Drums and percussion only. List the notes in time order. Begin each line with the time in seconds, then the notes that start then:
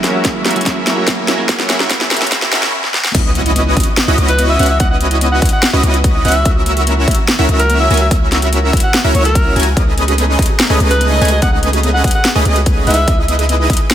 0.04 snare, closed hi-hat
0.25 kick, snare, closed hi-hat
0.45 snare, closed hi-hat
0.51 closed hi-hat
0.56 closed hi-hat
0.61 closed hi-hat
0.66 kick, snare, closed hi-hat
0.87 snare, closed hi-hat
1.08 kick, snare, closed hi-hat
1.28 snare, closed hi-hat
1.49 kick, snare, closed hi-hat
1.59 snare
1.70 snare, closed hi-hat
1.80 snare
1.90 kick, snare, closed hi-hat
2.01 snare
2.11 snare, closed hi-hat
2.16 closed hi-hat
2.22 snare, closed hi-hat
2.27 closed hi-hat
2.32 kick, snare, closed hi-hat
2.42 snare
2.52 snare, closed hi-hat
2.63 snare
2.84 snare
2.94 snare
3.04 snare
3.15 kick, closed hi-hat, crash
3.35 closed hi-hat
3.46 closed hi-hat
3.56 closed hi-hat
3.77 kick, closed hi-hat
3.80 closed hi-hat
3.84 closed hi-hat
3.97 snare, closed hi-hat
4.18 closed hi-hat
4.29 closed hi-hat
4.39 closed hi-hat
4.59 closed hi-hat
4.63 closed hi-hat
4.66 closed hi-hat
4.80 kick, closed hi-hat
5.01 closed hi-hat
5.11 closed hi-hat
5.21 closed hi-hat
5.42 kick, closed hi-hat
5.45 closed hi-hat
5.49 closed hi-hat
5.63 snare, closed hi-hat
5.83 closed hi-hat
5.94 closed hi-hat
6.04 kick, closed hi-hat
6.25 closed hi-hat
6.28 closed hi-hat
6.32 closed hi-hat
6.45 kick, closed hi-hat
6.66 closed hi-hat
6.77 closed hi-hat
6.87 closed hi-hat
7.08 kick, closed hi-hat
7.11 closed hi-hat
7.15 closed hi-hat
7.28 snare, closed hi-hat
7.49 closed hi-hat
7.60 closed hi-hat
7.70 closed hi-hat
7.91 closed hi-hat
7.94 closed hi-hat
7.97 closed hi-hat
8.11 kick, closed hi-hat
8.32 snare, closed hi-hat
8.42 closed hi-hat
8.53 closed hi-hat
8.73 kick, closed hi-hat
8.77 closed hi-hat
8.80 closed hi-hat
8.94 snare, closed hi-hat
9.15 closed hi-hat
9.25 closed hi-hat
9.35 kick, closed hi-hat
9.56 closed hi-hat
9.60 closed hi-hat
9.63 closed hi-hat
9.77 kick, closed hi-hat
9.98 closed hi-hat
10.08 closed hi-hat
10.18 closed hi-hat
10.39 kick, closed hi-hat
10.42 closed hi-hat
10.46 closed hi-hat
10.60 snare, closed hi-hat
10.80 closed hi-hat
10.91 closed hi-hat
11.01 closed hi-hat
11.22 closed hi-hat
11.25 closed hi-hat
11.28 closed hi-hat
11.42 kick, closed hi-hat
11.63 closed hi-hat
11.73 closed hi-hat
11.83 closed hi-hat
12.04 kick, closed hi-hat
12.08 closed hi-hat
12.11 closed hi-hat
12.25 snare, closed hi-hat
12.45 closed hi-hat
12.56 closed hi-hat
12.66 kick, closed hi-hat
12.87 closed hi-hat
12.90 closed hi-hat
12.94 closed hi-hat
13.08 kick, closed hi-hat
13.28 closed hi-hat
13.39 closed hi-hat
13.49 closed hi-hat
13.70 kick, closed hi-hat
13.73 closed hi-hat
13.77 closed hi-hat
13.91 snare, closed hi-hat